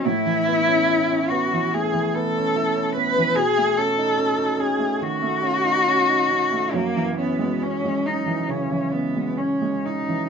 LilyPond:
<<
  \new Staff \with { instrumentName = "Cello" } { \time 4/4 \key fis \dorian \tempo 4 = 70 e'4. fis'8 gis'8 a'4 b'8 | gis'8 a'4 gis'8 fis'2 | ais8 b8 cis'8 dis'8 cis'8 b8 cis'8 dis'8 | }
  \new Staff \with { instrumentName = "Grand piano" } { \time 4/4 \key fis \dorian a,16 e16 b16 cis'16 e'16 cis'16 b16 e16 a16 e16 b16 cis'16 e'16 cis'16 b16 e16 | b,16 a16 cis'16 dis'16 cis'16 dis'16 cis'16 a16 dis16 a16 cis'16 dis'16 cis'16 dis'16 cis'16 a16 | fis,16 e16 cis'16 gis16 cis'16 gis16 cis'16 e16 cis16 e16 cis'16 gis16 cis'16 gis16 cis'16 e16 | }
>>